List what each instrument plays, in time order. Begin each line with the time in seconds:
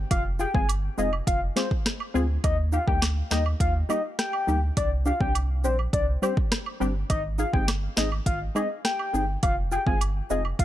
0.11 sub bass F1, soft synth lead F5, kick, closed hi-hat, high woodblock
0.39 synth stab F4 G#4, soft synth lead G5, cabasa
0.54 sub bass G1, synth stab G#3 C4 F4 G#4, soft synth lead G#5, kick
0.69 closed hi-hat, high woodblock
0.98 sub bass F1, synth stab G#3 C4 F4 G#4, soft synth lead D#5, cabasa
1.13 high woodblock
1.27 sub bass F1, soft synth lead F5, kick, closed hi-hat
1.56 synth stab G#3 C4 F4 G#4, soft synth lead C5, snare, cabasa, high woodblock
1.71 kick
1.86 cross-stick, snare, closed hi-hat
2.00 high woodblock
2.14 sub bass D2, synth stab G#3 C4 F4 G#4, cabasa
2.44 sub bass D#2, soft synth lead D#5, kick, closed hi-hat, high woodblock
2.72 synth stab D#4 G4, soft synth lead F5, cabasa
2.87 sub bass D2, synth stab G3 A#3 D#4 G4, soft synth lead G5, kick
3.02 cross-stick, snare, closed hi-hat, high woodblock
3.31 sub bass D#2, synth stab G3 A#3 D#4 G4, soft synth lead D#5, cross-stick, snare, cabasa
3.46 high woodblock
3.60 sub bass D#2, soft synth lead F5, kick, closed hi-hat
3.89 synth stab G3 A#3 D#4 G4, soft synth lead D#5, cabasa, high woodblock
4.19 soft synth lead G5, cross-stick, snare, closed hi-hat
4.33 high woodblock
4.47 sub bass D2, synth stab G3 A#3 D#4 G4, cabasa
4.77 sub bass C2, soft synth lead D5, kick, closed hi-hat, high woodblock
5.06 synth stab D4 G4, soft synth lead F5, cabasa
5.20 sub bass C2, synth stab G3 C4 D4 G4, soft synth lead G5, kick
5.35 closed hi-hat, high woodblock
5.64 sub bass A#1, synth stab G3 C4 D4 G4, soft synth lead C5, cabasa
5.79 high woodblock
5.93 sub bass C2, soft synth lead D5, kick, closed hi-hat
6.22 synth stab G3 C4 D4 G4, soft synth lead C5, cabasa, high woodblock
6.37 kick
6.52 cross-stick, snare, closed hi-hat
6.66 high woodblock
6.80 sub bass G1, synth stab G3 C4 D4 G4, cabasa
7.10 sub bass G#1, soft synth lead D#5, kick, closed hi-hat, high woodblock
7.38 synth stab D#4 G#4, soft synth lead F5, cabasa
7.53 sub bass G1, synth stab G#3 C4 D#4 G#4, soft synth lead G5, kick
7.68 cross-stick, snare, closed hi-hat, high woodblock
7.97 sub bass G#1, synth stab G#3 C4 D#4 G#4, soft synth lead D#5, cross-stick, snare, cabasa
8.12 high woodblock
8.26 sub bass G#1, soft synth lead F5, kick, closed hi-hat
8.55 synth stab G#3 C4 D#4 G#4, soft synth lead D#5, cabasa, high woodblock
8.85 soft synth lead G5, cross-stick, snare, closed hi-hat
8.99 high woodblock
9.13 sub bass G1, synth stab G#3 C4 D#4 G#4, cabasa
9.43 sub bass F1, soft synth lead F5, kick, closed hi-hat, high woodblock
9.72 synth stab F4 G#4, soft synth lead G5, cabasa
9.86 sub bass G1, synth stab G#3 C4 F4 G#4, soft synth lead G#5, kick
10.01 closed hi-hat, high woodblock
10.30 sub bass F1, synth stab G#3 C4 F4 G#4, soft synth lead D#5, cabasa
10.45 high woodblock
10.59 sub bass F1, soft synth lead F5, kick, closed hi-hat